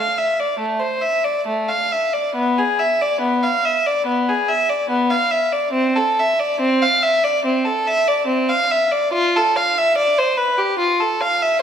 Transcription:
0.00 0.16 F5 medium
0.18 0.38 E5 soft
0.40 0.60 D5 soft
0.59 0.80 A3 soft
0.80 1.01 C5 soft
1.01 1.23 E5 medium
1.24 1.45 D5 soft
1.47 1.67 A3 soft
1.69 1.90 F5 soft
1.92 2.12 E5 soft
2.13 2.35 D5 soft
2.35 2.56 B3 medium
2.58 2.79 G#4 medium
2.79 3.00 E5 soft
3.01 3.21 D5 medium
3.21 3.41 B3 medium
3.44 3.63 F5 medium
3.65 3.85 E5 medium
3.86 4.06 D5 medium
4.06 4.26 B3 medium
4.29 4.49 G#4 soft
4.49 4.69 E5 medium
4.70 4.91 D5 soft
4.90 5.11 B3 medium
5.10 5.32 F5 medium
5.31 5.53 E5 soft
5.53 5.74 D5 soft
5.73 5.95 C4 medium
5.96 6.17 A4 medium
6.19 6.39 E5 medium
6.39 6.60 D5 medium
6.60 6.80 C4 medium
6.82 7.02 F5 medium
7.03 7.23 E5 medium
7.24 7.44 D5 medium
7.45 7.64 C4 medium
7.65 7.85 A4 medium
7.87 8.06 E5 medium
8.08 8.27 D5 medium
8.27 8.47 C4 medium
8.50 8.69 F5 medium
8.71 8.91 E5 medium
8.92 9.13 D5 medium
9.13 9.33 F4 medium
9.36 9.56 A4 medium
9.56 9.76 F5 medium
9.78 9.97 E5 medium
9.98 10.17 D5 medium
10.19 10.38 C5 medium
10.37 10.58 B4 medium
10.58 10.78 G4 medium
10.79 10.98 F4 medium
11.00 11.20 A4 medium
11.21 11.40 F5 medium
11.42 11.61 E5 medium

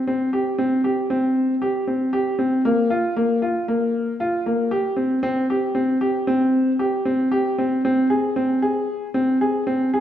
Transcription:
0.07 0.28 C4 medium
0.33 0.54 G4 medium
0.58 0.80 C4 medium
0.84 1.05 G4 medium
1.10 1.53 C4 medium
1.62 1.83 G4 medium
1.87 2.09 C4 medium
2.13 2.34 G4 medium
2.39 2.60 C4 medium
2.65 2.86 A#3 medium
2.90 3.12 F4 medium
3.16 3.38 A#3 medium
3.42 3.63 F4 medium
3.68 4.11 A#3 medium
4.20 4.41 F4 medium
4.46 4.67 A#3 medium
4.71 4.93 G4 medium
4.97 5.18 C4 medium
5.23 5.45 C4 loud
5.50 5.71 G4 medium
5.75 5.97 C4 medium
6.01 6.23 G4 medium
6.27 6.71 C4 medium
6.79 7.01 G4 medium
7.05 7.28 C4 medium
7.32 7.54 G4 medium
7.58 7.80 C4 medium
7.85 8.07 C4 medium
8.10 8.32 G#4 medium
8.36 8.58 C4 medium
8.62 9.06 G#4 medium
9.14 9.37 C4 medium
9.41 9.63 G#4 medium
9.67 9.89 C4 medium
9.94 10.00 G#4 medium

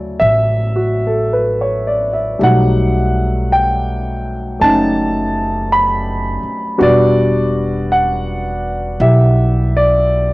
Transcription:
0.00 0.17 D2 medium
0.00 2.42 C#3 soft
0.00 2.41 F#3 medium
0.00 2.37 A3 soft
0.00 2.42 E4 medium
0.00 0.17 D5 medium
0.19 2.37 A1 medium
0.19 1.99 E5 medium
0.76 1.10 F#4 soft
1.07 1.44 A4 soft
1.33 1.83 B4 soft
1.61 2.06 C#5 soft
1.87 2.21 D5 medium
2.13 2.52 E5 soft
2.39 4.57 B1 medium
2.39 6.77 G3 soft
2.39 4.58 A3 soft
2.39 4.62 D#4 soft
2.43 6.82 F#3 soft
2.43 3.55 F#5 medium
3.52 4.58 G5 medium
4.60 6.40 F#1 medium
4.60 6.80 A3 soft
4.60 6.81 C#4 soft
4.60 6.82 D#4 soft
4.60 5.74 A5 medium
5.72 6.59 B5 medium
6.43 muted upright bass stroke soft
6.78 8.96 E1 medium
6.78 10.33 G3 medium
6.78 10.33 B3 soft
6.78 10.33 D4 soft
6.78 10.33 F#4 medium
6.83 7.95 D5 medium
7.92 9.05 F#5 medium
9.00 10.33 B1 medium
9.00 10.33 E4 soft
9.00 10.33 G4 soft
9.00 9.76 E5 medium
9.76 10.33 D5 medium

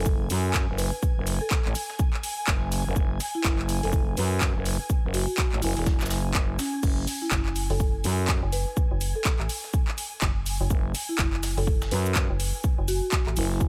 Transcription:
0.00 0.29 F#1 loud
0.00 13.68 G#5 medium
0.06 kick loud
0.06 shaker medium
0.30 0.66 F#2 loud
0.30 open hi-hat loud
0.30 shaker medium
0.54 kick loud
0.54 snare loud
0.54 clap loud
0.54 shaker medium
0.69 0.91 F#1 loud
0.78 0.96 B4 medium
0.78 open hi-hat loud
0.78 shaker medium
1.03 kick loud
1.03 shaker medium
1.17 1.39 F#1 loud
1.27 open hi-hat loud
1.27 shaker medium
1.41 1.90 A4 medium
1.51 kick loud
1.51 snare loud
1.51 clap loud
1.51 shaker medium
1.65 1.74 A1 loud
1.65 clap soft
1.75 open hi-hat loud
1.75 shaker medium
1.90 snare soft
1.99 kick loud
1.99 shaker medium
2.13 clap soft
2.23 open hi-hat loud
2.23 shaker medium
2.47 2.84 F#1 loud
2.47 kick loud
2.47 snare loud
2.47 clap loud
2.47 shaker medium
2.72 open hi-hat loud
2.72 shaker medium
2.86 2.95 F#1 loud
2.96 3.19 F#1 medium
2.96 kick loud
2.96 shaker medium
3.20 snare medium
3.20 open hi-hat loud
3.20 shaker medium
3.35 3.49 E4 medium
3.44 3.81 F#1 loud
3.44 kick loud
3.44 snare loud
3.44 clap loud
3.44 shaker medium
3.59 clap soft
3.69 open hi-hat loud
3.69 shaker medium
3.83 4.16 F#1 loud
3.83 3.97 A4 medium
3.83 open hi-hat medium
3.93 kick loud
3.93 shaker medium
4.17 4.53 F#2 medium
4.17 4.34 B4 loud
4.17 open hi-hat loud
4.17 shaker medium
4.41 kick loud
4.41 snare loud
4.41 clap loud
4.41 shaker medium
4.56 4.78 F#1 loud
4.65 open hi-hat loud
4.65 shaker medium
4.90 kick loud
4.90 shaker medium
5.04 5.26 F#1 loud
5.14 5.23 F#4 medium
5.14 open hi-hat loud
5.14 shaker medium
5.28 5.34 F#4 medium
5.38 kick loud
5.38 snare loud
5.38 clap loud
5.38 shaker medium
5.52 5.61 A1 loud
5.52 clap soft
5.62 5.74 F#1 loud
5.62 5.79 E4 medium
5.62 open hi-hat loud
5.62 shaker medium
5.77 5.99 E1 medium
5.77 snare soft
5.77 open hi-hat medium
5.86 kick loud
5.86 snare loud
5.86 shaker medium
6.01 6.33 F#1 loud
6.01 snare medium
6.01 clap soft
6.01 shaker medium
6.06 snare medium
6.06 shaker medium
6.11 snare loud
6.11 open hi-hat loud
6.11 shaker medium
6.34 6.57 F#1 loud
6.34 kick loud
6.34 snare loud
6.34 clap loud
6.34 shaker medium
6.59 6.68 C#4 medium
6.59 snare loud
6.59 open hi-hat loud
6.59 shaker medium
6.74 6.80 C#4 medium
6.83 7.06 F#1 medium
6.83 kick loud
6.83 crash medium
6.83 shaker medium
7.07 snare soft
7.07 open hi-hat loud
7.07 shaker medium
7.22 7.36 E4 medium
7.31 7.68 F#1 loud
7.31 kick loud
7.31 snare loud
7.31 clap loud
7.31 shaker loud
7.46 clap soft
7.56 open hi-hat loud
7.56 shaker medium
7.70 8.03 F#1 loud
7.70 7.84 A4 medium
7.70 open hi-hat medium
7.80 kick loud
7.80 shaker medium
8.04 8.41 F#2 loud
8.04 open hi-hat loud
8.04 shaker medium
8.28 kick loud
8.28 snare loud
8.28 clap loud
8.28 shaker medium
8.43 8.65 F#1 loud
8.52 8.70 B4 medium
8.52 open hi-hat loud
8.52 shaker medium
8.77 kick loud
8.77 shaker medium
8.91 9.13 F#1 loud
9.01 open hi-hat loud
9.01 shaker medium
9.16 9.64 A4 medium
9.25 kick loud
9.25 snare loud
9.25 clap loud
9.25 shaker medium
9.39 9.48 A1 medium
9.39 clap soft
9.49 open hi-hat loud
9.49 shaker medium
9.64 snare soft
9.74 kick loud
9.74 shaker medium
9.88 clap soft
9.98 open hi-hat loud
9.98 shaker medium
10.22 10.58 F#1 loud
10.22 kick loud
10.22 snare loud
10.22 clap loud
10.22 shaker medium
10.46 open hi-hat loud
10.46 shaker medium
10.61 10.69 F#1 loud
10.70 10.93 F#1 loud
10.70 kick loud
10.70 shaker loud
10.95 snare medium
10.95 open hi-hat loud
10.95 shaker medium
11.09 11.23 E4 medium
11.19 11.55 F#1 loud
11.19 kick loud
11.19 snare loud
11.19 clap loud
11.19 shaker medium
11.33 clap soft
11.43 snare loud
11.43 open hi-hat loud
11.43 shaker medium
11.57 11.90 F#1 loud
11.57 11.71 A4 medium
11.57 open hi-hat medium
11.67 kick loud
11.67 shaker medium
11.82 snare loud
11.82 shaker medium
11.91 12.28 F#2 medium
11.91 12.09 B4 loud
11.91 open hi-hat loud
12.06 shaker medium
12.15 kick loud
12.15 snare loud
12.15 clap loud
12.15 shaker medium
12.30 12.52 F#1 loud
12.40 open hi-hat loud
12.40 shaker medium
12.64 kick loud
12.64 shaker medium
12.78 13.00 F#1 loud
12.88 12.97 F#4 medium
12.88 open hi-hat loud
12.88 shaker medium
13.02 13.09 F#4 medium
13.12 kick loud
13.12 snare loud
13.12 clap loud
13.12 shaker medium
13.27 13.35 A1 loud
13.27 clap soft
13.36 13.68 F#1 loud
13.36 13.54 E4 medium
13.36 open hi-hat loud
13.36 shaker medium
13.51 snare medium
13.61 kick loud
13.61 shaker medium

